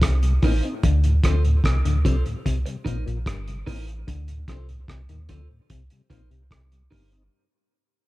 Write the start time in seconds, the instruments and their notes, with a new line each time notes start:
0.02 sub bass C2, clav C3, kick, cross-stick, closed hi-hat
0.23 tonewheel organ C3 G3, closed hi-hat
0.42 sub bass A1, clav A2, tonewheel organ A#3 C4 D#4, clean electric guitar D#4 A#4 C5, kick, open hi-hat
0.63 tonewheel organ C4 D#4, closed hi-hat
0.83 sub bass D2, clav D3, kick, closed hi-hat
1.04 tonewheel organ D2 A2, closed hi-hat
1.23 sub bass D2, clav D3, tonewheel organ F3 C4 D4, clean electric guitar F4 A4 C5, kick, cross-stick, closed hi-hat
1.44 tonewheel organ D2 A2, closed hi-hat
1.64 sub bass C2, clav C3, kick, cross-stick, closed hi-hat
1.85 sub bass D2, tonewheel organ D2 A2, clav D3, closed hi-hat
2.05 sub bass C2, clav C3, tonewheel organ F3 C4 D4, clean electric guitar F4 A4 C5, kick, closed hi-hat
2.26 tonewheel organ D2 A2, closed hi-hat
2.46 sub bass C2, clav C3, kick, closed hi-hat
2.66 tonewheel organ C3 G3, muted clean electric guitar stroke, closed hi-hat
2.85 sub bass A#1, clav A#2, tonewheel organ A#3 C4 D#4, clean electric guitar D#4 A#4 C5, kick, closed hi-hat
3.06 sub bass A#1, clav A#2, closed hi-hat
3.26 sub bass G1, clav G2, kick, cross-stick, closed hi-hat
3.48 tonewheel organ C3 G3, closed hi-hat
3.66 sub bass A1, clav A2, tonewheel organ A#3 C4 D#4, clean electric guitar D#4 A#4 C5, kick, open hi-hat
3.87 closed hi-hat
4.07 sub bass D2, clav D3, kick, closed hi-hat
4.28 tonewheel organ D2 A2, closed hi-hat
4.48 sub bass C2, clav C3, tonewheel organ F3 C4 D4, clean electric guitar F4 A4 C5, kick, cross-stick, closed hi-hat
4.69 tonewheel organ D2 A2, closed hi-hat
4.88 sub bass C2, clav C3, kick, cross-stick, closed hi-hat
5.09 tonewheel organ D2 A2, sub bass D#2, clav D#3, closed hi-hat
5.29 sub bass D2, clav D3, tonewheel organ F3 C4 D4, clean electric guitar F4 A4 C5, kick, closed hi-hat
5.51 tonewheel organ D2 A2
5.70 sub bass C2, clav C3, kick, closed hi-hat
5.90 tonewheel organ C3 G3, closed hi-hat
6.10 sub bass A#1, clav A#2, tonewheel organ A#3 C4 D#4, clean electric guitar D#4 A#4 C5, kick, closed hi-hat
6.31 sub bass C2, clav C3, closed hi-hat
6.51 sub bass C2, clav C3, kick, cross-stick, closed hi-hat
6.72 tonewheel organ C3 G3, closed hi-hat
6.91 sub bass G1, clav G2, tonewheel organ A#3 C4 D#4, clean electric guitar D#4 A#4 C5, kick, open hi-hat
7.12 tonewheel organ C4 D#4, muted clean electric guitar stroke, closed hi-hat